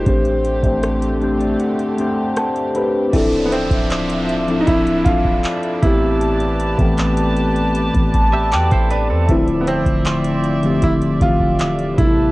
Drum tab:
CC |----------------|x---------------|----------------|----------------|
HH |xxxxxxxxxxx-xxx-|xxxxxxxxxxx-xxx-|xxxxxxxxxxx-xxx-|xxxxxxxxxxx-xxx-|
CP |----------------|----x-------x---|----x-------x---|----x-------x---|
SD |----r-------r---|----------------|----------------|----------------|
BD |o--o------------|o--o----o-oo--o-|---o-----oo--o--|o--o----o-oo--o-|